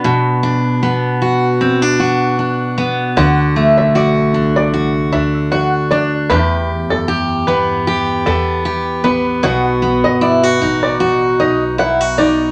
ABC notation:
X:1
M:4/4
L:1/16
Q:"Swing 16ths" 1/4=76
K:Dmix
V:1 name="Five-string banjo"
z16 | f z2 e d z2 d2 z e z f z d z | B2 z A z2 B2 z2 A2 z2 B z | f z2 ^d =d z2 d2 z ^d z f z =d z |]
V:2 name="Steel-string acoustic guitar"
[B,,B,DF]2 D2 B,2 F2 C D F2 D2 B,2 | [D,F]2 A,2 F2 D2 F2 D2 F2 D2 | [E,,G]4 G2 B,2 G2 B,2 G2 B,2 | [B,,F]2 B,2 E F ^D2 F2 D2 E F D2 |]
V:3 name="Upright bass" clef=bass
z16 | D,,3 B,,,3 C,,4 D,,6 | E,,3 F,,3 G,,4 E,,4 A,,,2 | B,,,3 G,,,3 A,,,4 B,,,6 |]